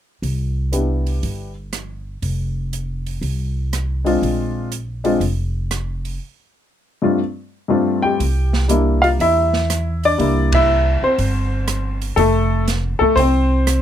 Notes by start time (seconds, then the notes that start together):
0.22 C2, open hi-hat
0.72 B3 D4 E4 G4, closed hi-hat
1.07 open hi-hat
1.23 G1, open hi-hat
1.73 cross-stick, closed hi-hat
2.22 F1, open hi-hat
2.73 closed hi-hat
3.07 open hi-hat
3.21 C2, open hi-hat
3.73 cross-stick, closed hi-hat
4.04 G#3 C4 D4 F4, open hi-hat
4.22 A#1, open hi-hat
4.72 closed hi-hat
5.04 G#3 C4 D4 F4, open hi-hat
5.20 F1, open hi-hat
5.71 cross-stick, closed hi-hat
6.05 open hi-hat
7.02 G2 A3 C4 D4 F4
7.68 G2 A3 C4 D4 F4
8.02 G4 G5
8.20 C2, open hi-hat
8.53 snare
8.68 G3 A#3 D4 E4, closed hi-hat
9.02 F4 F5, open hi-hat
9.19 E2 E4 E5, open hi-hat
9.53 snare
9.70 cross-stick, closed hi-hat
10.04 D4 D5, open hi-hat
10.18 C2 G3 A#3 D4 E4, open hi-hat
10.52 E4 E5, kick, ride
11.02 C4 C5, muted upright bass stroke
11.18 G1, open hi-hat
11.68 cross-stick, closed hi-hat
12.02 open hi-hat
12.16 F1 A3 A4, open hi-hat
12.68 snare, closed hi-hat
12.99 A3 A4, muted upright bass stroke, kick
13.16 C2 C4 C5, open hi-hat
13.67 cross-stick, closed hi-hat